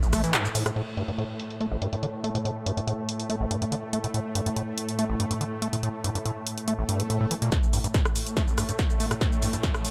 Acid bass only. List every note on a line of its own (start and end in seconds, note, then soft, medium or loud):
0.03 0.08 A1 medium
0.13 0.22 A3 loud
0.24 0.35 E3 loud
0.34 0.46 G2 medium
0.45 0.48 A2 medium
0.55 0.64 A2 medium
0.66 0.71 A2 medium
0.76 0.82 A2 medium
0.97 1.03 G2 medium
1.08 1.12 G2 medium
1.18 1.24 A2 medium
1.61 1.67 A3 medium
1.71 1.77 A1 medium
1.82 1.88 G2 medium
1.93 1.96 G2 medium
2.03 2.06 D3 medium
2.24 2.30 A3 medium
2.35 2.38 A2 medium
2.45 2.51 A2 medium
2.66 2.72 G2 medium
2.77 2.81 G2 medium
2.87 2.93 A2 medium
3.30 3.36 A3 medium
3.40 3.46 A1 medium
3.51 3.57 G2 medium
3.62 3.65 G2 medium
3.72 3.76 D3 medium
3.93 3.99 A3 medium
4.04 4.07 A2 medium
4.14 4.20 A2 medium
4.35 4.41 G2 medium
4.46 4.50 G2 medium
4.56 4.62 A2 medium
4.99 5.05 A3 medium
5.10 5.15 A1 medium
5.20 5.26 G2 medium
5.31 5.34 G2 medium
5.41 5.44 D3 medium
5.62 5.68 A3 medium
5.73 5.76 A2 medium
5.83 5.89 A2 medium
6.04 6.10 G2 medium
6.15 6.19 G2 medium
6.26 6.31 A2 medium
6.68 6.74 A3 medium
6.79 6.84 A1 medium
6.89 7.01 G2 medium
7.00 7.03 A2 medium
7.10 7.19 A2 medium
7.21 7.26 A2 loud
7.31 7.35 E3 medium
7.42 7.50 A#2 loud
7.73 7.79 G2 medium
7.84 7.88 G2 medium
7.94 8.00 A2 medium
8.37 8.43 A3 medium
8.48 8.53 A1 medium
8.58 8.64 G2 medium
8.69 8.72 G2 medium
8.79 8.83 D3 medium
9.00 9.06 A3 medium
9.11 9.14 A2 medium
9.21 9.27 A2 medium
9.42 9.48 G2 medium
9.53 9.57 G2 medium
9.64 9.69 A2 medium